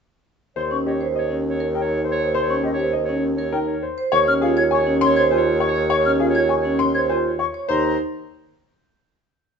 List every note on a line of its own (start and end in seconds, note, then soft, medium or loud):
0.56 3.97 D#2 medium
0.56 0.76 C5 medium
0.56 0.78 C#5 soft
0.56 0.62 C6 medium
0.71 0.90 C#4 medium
0.71 0.77 C#6 medium
0.86 1.05 G4 medium
0.86 1.09 C#5 soft
0.86 0.92 D#5 medium
1.01 1.20 C5 medium
1.16 1.40 C#5 medium
1.16 1.35 D#5 medium
1.30 1.50 C#4 medium
1.49 1.71 C#5 medium
1.60 1.80 A#4 medium
1.75 1.94 D#4 medium
1.75 1.95 A#4 medium
1.75 1.81 G5 medium
1.80 2.02 C#5 medium
2.05 2.24 C5 medium
2.11 2.33 C#5 medium
2.19 2.39 C5 medium
2.34 2.54 C5 medium
2.34 2.41 C6 medium
2.42 2.64 C#5 medium
2.50 2.69 C#4 medium
2.50 2.56 C#6 medium
2.63 2.83 G4 medium
2.63 2.70 D#5 medium
2.73 2.95 C#5 medium
2.79 2.99 C5 medium
2.93 3.13 D#5 medium
3.04 3.26 C#5 medium
3.09 3.28 C#4 medium
3.36 3.58 A#4 medium
3.36 3.58 C#5 medium
3.52 3.73 D#4 medium
3.52 3.72 A#4 medium
3.52 3.59 G5 medium
3.66 3.88 C#5 soft
3.82 4.02 C5 medium
3.98 4.17 C5 medium
4.12 7.53 D#2 medium
4.12 4.32 C#5 medium
4.12 4.34 C#5 soft
4.12 4.19 C#6 medium
4.27 4.47 C#4 medium
4.27 4.34 F6 medium
4.41 4.62 F4 medium
4.41 4.61 G#4 medium
4.41 4.66 C#5 medium
4.41 4.48 F5 medium
4.57 4.76 C#5 medium
4.57 4.63 G#6 medium
4.71 4.96 C#5 medium
4.71 4.91 G#5 medium
4.71 4.78 C#6 medium
4.86 5.06 C#4 medium
5.01 5.21 C#5 medium
5.01 5.21 C6 loud
5.05 5.27 C#5 medium
5.16 5.36 C5 medium
5.16 5.22 G#6 medium
5.31 5.51 F4 medium
5.31 5.51 C5 medium
5.31 5.37 G#5 medium
5.37 5.59 C#5 medium
5.60 5.80 C#5 medium
5.60 5.67 C#6 medium
5.68 5.90 C#5 medium
5.76 5.89 C#5 medium
5.90 6.10 C#5 medium
5.90 5.96 C#6 medium
5.99 6.21 C#5 medium
6.05 6.25 C#4 medium
6.05 6.12 F6 medium
6.20 6.40 F4 medium
6.20 6.40 G#4 medium
6.20 6.26 F5 medium
6.30 6.52 C#5 medium
6.35 6.55 C#5 medium
6.35 6.41 G#6 medium
6.49 6.69 G#5 medium
6.49 6.56 C#6 medium
6.60 6.82 C#5 medium
6.65 6.84 C#4 medium
6.79 6.99 C#5 medium
6.79 6.99 C6 medium
6.91 7.14 C5 medium
6.91 7.13 C#5 soft
6.91 7.01 G#6 medium
7.09 7.29 F4 medium
7.09 7.29 C5 medium
7.09 7.15 G#5 medium
7.23 7.45 C#5 soft
7.39 7.59 C#5 medium
7.39 7.45 C#6 medium
7.54 7.74 C#5 medium
7.69 7.97 D#2 medium
7.69 7.97 D#4 medium
7.69 7.97 C5 medium
7.69 7.97 A#5 medium